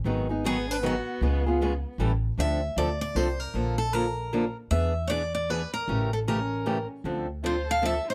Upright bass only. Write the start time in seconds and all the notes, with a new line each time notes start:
0.04 G#1
1.21 C#2
1.98 A1
2.38 D2
2.76 D2
3.15 C2
3.54 A#1
4.71 E2
5.88 A1
7.04 D2